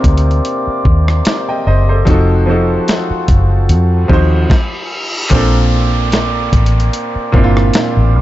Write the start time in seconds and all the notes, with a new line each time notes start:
Already playing: C3 A#3 C4 D4 D#4 A#4 D5
0.04 D2, kick, closed hi-hat
0.18 closed hi-hat
0.31 closed hi-hat
0.45 closed hi-hat
0.67 muted fingered electric bass stroke
0.85 D#2, kick
1.08 cross-stick
1.25 snare, closed hi-hat
1.49 D#5 G5
1.67 F#1 C5 D#5
1.89 A4 C5
2.05 F1 F3 C4 D#4 F#4 A4, kick, closed hi-hat
2.10 A4
2.46 F3 C4 D#4 F#4
2.51 A4
2.88 snare, closed hi-hat
3.10 muted fingered electric bass stroke
3.28 F#1, kick, closed hi-hat
3.69 F2, closed hi-hat, reverse cymbal
4.08 D#2 F3 C4 D#4 F#4, kick
4.13 C5
4.50 kick, snare
5.30 A#1 A#2 A#3 C4 D4 D5, kick, closed hi-hat, crash, downlifter
5.34 A4
6.12 snare, closed hi-hat
6.53 A1, kick, closed hi-hat
6.66 closed hi-hat
6.80 closed hi-hat
6.93 closed hi-hat
7.16 muted fingered electric bass stroke
7.32 G1 A#2 A#3 C4 D4, kick
7.37 E4
7.44 F4
7.57 cross-stick
7.74 snare, closed hi-hat
7.97 A1
8.16 B1